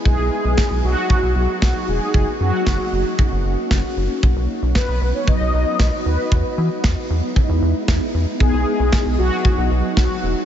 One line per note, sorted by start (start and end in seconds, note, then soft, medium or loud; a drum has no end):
0.00 2.10 B3 medium
0.00 4.19 D#4 medium
0.05 0.17 B1 loud
0.05 2.12 F#3 medium
0.05 4.19 F#4 medium
0.05 0.86 G#4 loud
0.05 kick loud
0.19 0.30 B1 loud
0.45 0.56 B1 loud
0.58 kick loud
0.58 snare loud
0.71 0.82 B1 medium
0.84 0.95 B1 loud
0.84 1.61 F#4 loud
1.10 kick loud
1.23 1.34 B1 medium
1.36 1.47 B1 loud
1.62 1.73 B1 loud
1.62 1.89 F#4 loud
1.62 kick loud
1.62 snare loud
1.88 2.00 E1 loud
1.88 2.12 G#4 medium
2.14 2.26 F#1 loud
2.14 4.21 A#3 medium
2.14 4.21 C#4 medium
2.14 2.26 G#4 loud
2.14 kick loud
2.40 2.52 F#2 medium
2.40 3.15 F#4 medium
2.67 2.78 F#1 medium
2.67 kick loud
2.67 snare loud
2.92 3.04 F#1 loud
3.19 kick loud
3.32 3.43 F#1 medium
3.45 3.56 F#1 medium
3.71 3.82 F#1 loud
3.71 kick loud
3.71 snare loud
3.97 4.08 F#1 loud
4.23 4.34 B1 loud
4.23 6.30 F#3 medium
4.23 10.45 B3 medium
4.23 10.45 D#4 medium
4.23 6.29 F#4 medium
4.23 kick loud
4.36 4.47 B1 loud
4.62 4.74 B1 loud
4.75 5.12 B4 medium
4.75 kick loud
4.75 snare loud
4.88 5.00 B1 loud
5.01 5.13 B1 loud
5.14 5.28 C#5 medium
5.27 6.01 D#5 loud
5.27 kick loud
5.41 5.52 B1 medium
5.54 5.65 B1 loud
5.79 5.91 B1 loud
5.79 kick loud
5.79 snare loud
6.05 6.17 D#2 medium
6.05 6.54 B4 medium
6.31 6.43 E2 loud
6.31 8.38 G#3 medium
6.31 8.38 E4 medium
6.31 kick loud
6.58 6.69 E3 medium
6.84 6.95 E2 loud
6.84 kick loud
6.84 snare loud
7.10 7.21 E2 loud
7.36 kick loud
7.49 7.60 E2 medium
7.62 7.73 E2 medium
7.88 8.00 E2 loud
7.88 kick loud
7.88 snare loud
8.14 8.26 E2 medium
8.40 8.52 B1 loud
8.40 10.45 F#3 medium
8.40 10.45 F#4 medium
8.40 9.15 G#4 loud
8.40 kick loud
8.54 8.65 B1 loud
8.79 8.91 B1 loud
8.92 kick loud
8.92 snare loud
9.06 9.17 B1 medium
9.18 9.30 B1 loud
9.18 9.67 F#4 loud
9.45 kick loud
9.58 9.69 B1 medium
9.71 9.82 B1 loud
9.97 10.08 B1 loud
9.97 10.45 F#4 medium
9.97 kick loud
9.97 snare loud
10.23 10.34 E1 loud